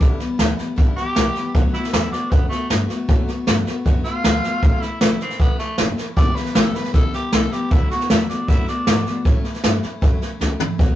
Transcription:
Already playing: D4
0.00 B1 G2 D3 E3 G3 B3 E4, kick, snare
0.19 E3 G3 B3 E4, muted upright bass stroke, snare
0.38 D2 E3 G3 B3 E4, snare, hi-hat pedal
0.57 E3 G3 B3 E4, muted upright bass stroke, snare
0.76 B1 G2 D3 E3 G3 B3 E4, kick, snare
0.96 E3 G3 B3 E4 G4, muted upright bass stroke, snare
1.15 C2 E3 G3 B3 E4, snare, hi-hat pedal
1.35 E3 G3 B3 E4, snare
1.54 D2 D3 F#3 A3 B3 F#4, kick, snare
1.73 A3 B3 E4 F#4, muted upright bass stroke, snare
1.84 snare
1.93 E2 F#3 A3 B3 E4 F#4, snare, hi-hat pedal
2.12 A3 B3 D4 F#4, muted upright bass stroke, snare
2.30 F#2 D3 F#3 A3 B3 F#4, kick, snare
2.49 A3 B3 F#4, muted upright bass stroke, snare
2.54 A3
2.69 G2 F#3 A3 B3 F#4, snare, hi-hat pedal
2.89 A3 B3 F#4, muted upright bass stroke, snare
3.08 A2 D3 F#3 A3 B3 F#4, kick, snare
3.27 A3 B3 F#4, muted upright bass stroke, snare
3.47 G2 F#3 A3 B3 F#4, snare, hi-hat pedal
3.65 A3 B3 F#4, muted upright bass stroke, snare
3.85 F#2 D3 F#3 A3 B3 F#4, kick, snare
4.04 A3 B3 F4 F#4, muted upright bass stroke, snare
4.24 D2 F#3 A3 B3 F#4, snare, hi-hat pedal
4.43 A3 B3 F#4, muted upright bass stroke, snare
4.62 A1 A2 F#3 A3 C#4 E4, kick, snare
4.81 A3 C#4 E4, muted upright bass stroke, snare
5.01 B1 A3 E4, snare, hi-hat pedal
5.20 A3 C4 C#4 E4, snare
5.30 snare
5.39 C#2 A2 F#3 A3 B3 C#4 E4, kick, snare
5.58 A3 C#4 E4, snare
5.78 F#1 F#3 A3 C#4 E4, snare, hi-hat pedal
5.97 A3 C#4 E4, snare
6.16 G1 G2 D3 E3 G3 B3 E4 D5, kick, snare
6.35 E3 G3 B3 E4 B4, muted upright bass stroke, snare
6.46 snare
6.54 A1 E3 G3 B3 E4 A4, snare, hi-hat pedal
6.73 E3 G3 B3 E4 B4, muted upright bass stroke, snare
6.84 snare
6.93 B1 G2 D3 E3 G3 B3 E4 A4, kick, snare
7.12 E3 G3 B3 E4 G4, muted upright bass stroke, snare
7.32 C2 E3 G3 B3 E4 A4, snare, hi-hat pedal
7.51 E3 G3 B3 E4 G4, muted upright bass stroke, snare
7.71 D2 D3 F#3 A3 B3 E4 F#4, kick, snare
7.90 A3 B3 F#4, muted upright bass stroke, snare
8.01 snare
8.09 E2 F#3 A3 E4, snare, hi-hat pedal
8.29 A3 B3 D4 F#4, muted upright bass stroke, snare
8.48 F#2 D3 F#3 A3 B3 E4 F#4, kick, snare
8.67 A3 B3 D4 F#4, muted upright bass stroke, snare
8.86 G#2 F#3 A3 B3 F#4, snare, hi-hat pedal
9.05 A3 B3 F#4, muted upright bass stroke, snare
9.25 A2 F#3 A3 C#4 E4, kick, snare
9.44 A3 C#4 E4, muted upright bass stroke, snare
9.54 snare
9.63 G2 F#3 A3 C#4 E4, snare, hi-hat pedal
9.82 A3 C#4 E4, muted upright bass stroke, snare
10.01 F#2 A2 F#3 A3 C#4 E4, kick, snare
10.20 A3 C#4 E4, muted upright bass stroke, snare
10.40 C#2 F#3 A3 C#4 E4, snare, hi-hat pedal
10.59 A3 C#4 E4, floor tom
10.78 D2 D3 F#3 A3 B3 F#4, kick, snare

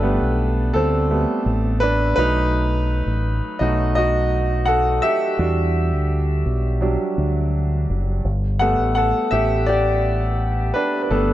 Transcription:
Already playing: G1 D4 G4 A4 B4 D5
0.02 G3 A3 B3
0.21 B1
0.73 D2 C4 A4
1.10 G3 A3 B3
1.46 A1
1.80 D4 B4
2.16 B1 F#3 A3 D#4 B4
3.06 A1
3.59 B1 F#3 A3 D#4 F#4 D#5
3.95 F#4 D#5
4.66 A4 F#5
5.02 G4 E5
5.38 E2 G3 D4 F#4
5.93 D2
6.46 B1
6.81 F#3 G3 D4
7.18 D2
7.89 F#1
8.25 G1
8.59 G3 A3 B3 A4 F#5
8.78 A1
8.95 A4 F#5
9.31 A1 G4 E5
9.66 G4 D5
10.74 D4 B4
11.02 B4
11.10 G1 G3 A3 B3 D4 A4

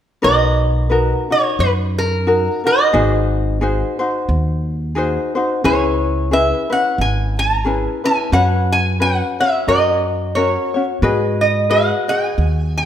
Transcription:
0.22 B1 D#4 F#4 A#4 B4 D#5
0.89 D#4 F#4 A#4 B4
1.30 D#4 F#4 C#5
1.59 F#2 B4
1.98 A#4
2.27 D#4 F#4 A#4
2.64 D#4 F#4 A#4 D#5
2.93 G#1 D#4 F#4 G#4 C5
3.61 D#4 F#4 G#4 C5
3.99 D#4 F#4 C5
4.29 D#2
4.95 D#4 F#4 G#4 C5
5.35 D#4 F#4 C5
5.64 C#2 C#4 E4 G#4 B4 C#5
6.31 C#4 E4 G#4 B4 E5
6.70 C#4 E4 B4 F#5
6.98 G#1 G#5
7.39 A#5
7.65 C#4 E4 G#4 B4
8.04 C#4 E4 B4 G#5
8.32 F#2 C#4 F#4 B4 C#5 F#5
8.72 G#5
9.00 C#4 F#4 B4 C#5 F#5
9.40 C#4 F#4 C#5 E5
9.68 F#2 C#4 F#4 A#4 C#5 D#5
10.35 C#4 F#4 A#4 C#5
10.74 C#4 F#4 C#5
11.02 G#2 F#4 G#4 B4 D#5
11.41 D#5
11.69 F#4 G#4 B4 D#5 F#5
12.08 F#4 G#4 D#5 G#5
12.38 D#2
12.78 F#5

